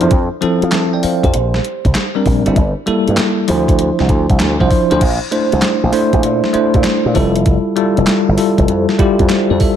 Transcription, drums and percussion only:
0.01 closed hi-hat
0.11 kick, closed hi-hat
0.42 closed hi-hat
0.62 closed hi-hat
0.72 snare, clap, closed hi-hat
1.03 open hi-hat
1.23 kick, closed hi-hat
1.34 closed hi-hat
1.54 snare
1.65 closed hi-hat
1.85 kick, closed hi-hat
1.95 snare, clap, closed hi-hat
2.26 kick, open hi-hat
2.46 closed hi-hat
2.56 kick, closed hi-hat
2.87 closed hi-hat
3.08 closed hi-hat
3.17 snare, clap, closed hi-hat
3.48 open hi-hat
3.68 kick, closed hi-hat
3.79 closed hi-hat
3.99 snare
4.09 kick, closed hi-hat
4.30 kick, closed hi-hat
4.40 snare, clap, closed hi-hat
4.60 kick
4.71 kick, open hi-hat
4.91 closed hi-hat
5.01 kick, closed hi-hat, crash
5.32 closed hi-hat
5.52 closed hi-hat
5.62 snare, clap, closed hi-hat
5.93 open hi-hat
6.13 kick, closed hi-hat
6.23 closed hi-hat
6.44 snare
6.54 closed hi-hat
6.74 kick, closed hi-hat
6.84 snare, clap, closed hi-hat
7.15 kick, open hi-hat
7.36 closed hi-hat
7.46 kick, closed hi-hat
7.77 closed hi-hat
7.97 closed hi-hat
8.07 snare, clap, closed hi-hat
8.38 open hi-hat
8.58 kick, closed hi-hat
8.68 closed hi-hat
8.89 snare
8.99 kick, closed hi-hat
9.19 kick, closed hi-hat
9.29 snare, clap, closed hi-hat
9.60 kick, open hi-hat

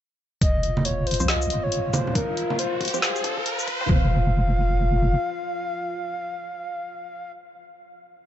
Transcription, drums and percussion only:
0.41 kick, closed hi-hat
0.63 closed hi-hat
0.77 high conga
0.85 closed hi-hat
1.07 closed hi-hat
1.11 closed hi-hat
1.14 closed hi-hat
1.20 shaker
1.28 snare, closed hi-hat
1.42 shaker
1.50 closed hi-hat
1.72 closed hi-hat
1.93 closed hi-hat, high conga, shaker
2.07 low conga
2.15 kick, closed hi-hat
2.37 closed hi-hat
2.50 high conga
2.59 closed hi-hat
2.81 kick, closed hi-hat
2.85 closed hi-hat
2.88 closed hi-hat
2.94 shaker
3.02 snare, closed hi-hat
3.16 shaker
3.24 closed hi-hat, low conga
3.37 kick
3.46 closed hi-hat
3.59 shaker
3.68 kick, closed hi-hat
3.89 kick

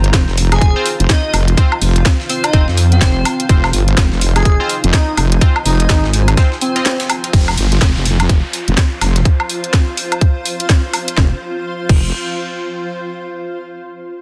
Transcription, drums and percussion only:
0.04 closed hi-hat
0.13 kick, snare, closed hi-hat
0.28 snare
0.37 closed hi-hat, open hi-hat
0.52 snare, closed hi-hat, high woodblock
0.61 kick, closed hi-hat
0.86 closed hi-hat, open hi-hat
1.00 closed hi-hat
1.09 kick, snare, closed hi-hat
1.34 closed hi-hat, open hi-hat, high woodblock
1.48 closed hi-hat
1.57 kick, closed hi-hat
1.72 high woodblock
1.81 open hi-hat
1.96 closed hi-hat
2.05 kick, snare, closed hi-hat
2.20 snare
2.29 closed hi-hat, open hi-hat
2.44 closed hi-hat, high woodblock
2.53 kick, closed hi-hat
2.68 snare
2.77 closed hi-hat, open hi-hat
2.92 closed hi-hat
3.01 kick, snare, closed hi-hat
3.25 closed hi-hat, open hi-hat, high woodblock
3.40 closed hi-hat
3.49 kick, closed hi-hat
3.64 snare, high woodblock
3.73 closed hi-hat, open hi-hat
3.88 closed hi-hat
3.97 kick, snare, closed hi-hat
4.12 snare
4.21 closed hi-hat, open hi-hat
4.36 snare, closed hi-hat, high woodblock
4.45 kick, closed hi-hat
4.69 closed hi-hat, open hi-hat
4.84 closed hi-hat
4.93 kick, snare, closed hi-hat
5.17 closed hi-hat, open hi-hat, high woodblock
5.32 closed hi-hat
5.41 kick, closed hi-hat
5.56 high woodblock
5.65 open hi-hat
5.80 closed hi-hat
5.89 kick, snare, closed hi-hat
6.04 snare
6.13 closed hi-hat, open hi-hat
6.28 closed hi-hat, high woodblock
6.37 kick, snare, closed hi-hat
6.52 snare
6.61 closed hi-hat, open hi-hat
6.76 snare, closed hi-hat
6.85 snare, closed hi-hat
7.00 snare, closed hi-hat
7.09 snare, open hi-hat, high woodblock
7.24 closed hi-hat
7.33 kick, closed hi-hat
7.48 snare, high woodblock
7.58 closed hi-hat, open hi-hat
7.72 closed hi-hat
7.81 kick, snare, closed hi-hat
7.96 snare
8.05 closed hi-hat, open hi-hat
8.20 snare, closed hi-hat, high woodblock
8.29 kick, closed hi-hat
8.53 closed hi-hat, open hi-hat
8.68 closed hi-hat
8.77 kick, snare, closed hi-hat
9.01 snare, closed hi-hat, open hi-hat, high woodblock
9.16 snare, closed hi-hat
9.25 kick, closed hi-hat
9.40 high woodblock
9.49 open hi-hat
9.64 closed hi-hat
9.73 kick, snare, closed hi-hat
9.97 open hi-hat
10.12 closed hi-hat, high woodblock
10.21 kick, closed hi-hat
10.46 open hi-hat
10.60 closed hi-hat
10.69 kick, snare, closed hi-hat
10.93 open hi-hat, high woodblock
11.08 closed hi-hat
11.17 kick, snare
11.89 kick, crash

